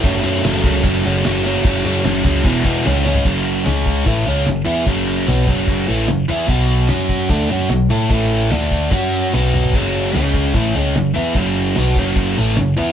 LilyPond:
<<
  \new Staff \with { instrumentName = "Overdriven electric guitar" } { \clef bass \time 4/4 \key fis \minor \tempo 4 = 148 <fis, cis fis>8 <fis, cis fis>8 <fis, cis fis>8 <fis, cis fis>8 <fis, cis fis>8 <fis, cis fis>8 <fis, cis fis>8 <fis, cis fis>8 | <fis, cis fis>8 <fis, cis fis>8 <fis, cis fis>8 <fis, cis fis>8 <e, b, e>8 <e, b, e>8 <cis gis cis'>8 <cis gis cis'>8 | <fis, cis fis>4 <cis gis cis'>4 <a, e a>8 <cis gis cis'>8 <fis, cis>8 <e b e'>8 | <fis, cis fis>4 <b, fis b>8 <fis, cis fis>4 <a, e a>8 <fis, cis>8 <e b e'>8 |
<b, fis b>4 <fis cis' fis'>4 <d a d'>8 <fis cis' fis'>8 <b, fis>8 <a e' a'>8 | <a, e a>4 <d a d'>4 <fis cis' fis'>4 <b, fis b>4 | <fis, cis fis>4 <cis gis cis'>4 <a, e a>8 <cis gis cis'>8 <fis, cis>8 <e b e'>8 | <fis, cis fis>4 <b, fis b>8 <fis, cis fis>4 <a, e a>8 <fis, cis>8 <e b e'>8 | }
  \new Staff \with { instrumentName = "Picked electric bass" } { \clef bass \time 4/4 \key fis \minor fis,,8 fis,8 fis,,8 cis,8 fis,,8 fis,,8 fis,,4 | fis,,8 fis,8 fis,,8 cis,8 e,,8 e,,8 cis,4 | fis,,4 cis,4 a,,8 cis,8 fis,,8 e,8 | fis,,4 b,,8 fis,,4 a,,8 fis,,8 e,8 |
b,,4 fis,4 d,8 fis,8 b,,8 a,8 | a,,4 d,4 fis,4 b,,4 | fis,,4 cis,4 a,,8 cis,8 fis,,8 e,8 | fis,,4 b,,8 fis,,4 a,,8 fis,,8 e,8 | }
  \new DrumStaff \with { instrumentName = "Drums" } \drummode { \time 4/4 <bd cymr>8 cymr8 <cymr sn>8 <bd cymr>8 <bd cymr>8 cymr8 <cymr sn>8 cymr16 sn16 | <bd cymr>8 cymr8 <cymr sn>8 <bd cymr>8 <bd cymr>8 <bd cymr>8 <cymr sn>8 sn16 tomfh16 | <cymc bd>8 hh8 <hh sn>8 <hh bd>8 <hh bd>8 hh8 <hh sn>8 hh8 | <hh bd>8 hh8 <hh sn>8 <hh bd>8 <hh bd>8 hh8 <hh sn>8 hh8 |
<hh bd>8 hh8 <hh sn>8 <hh bd>8 <hh bd>8 hh16 sn16 <hh sn>8 hh8 | <hh bd>8 hh8 <hh sn>8 <hh bd>8 <hh bd>8 hh8 sn8 toml16 tomfh16 | <hh bd>8 hh8 <hh sn>8 <hh bd>8 <hh bd>8 hh16 sn16 <hh sn>8 hh8 | <hh bd>8 hh8 <hh sn>8 <hh bd>8 <hh bd>8 hh8 <hh sn>8 hh8 | }
>>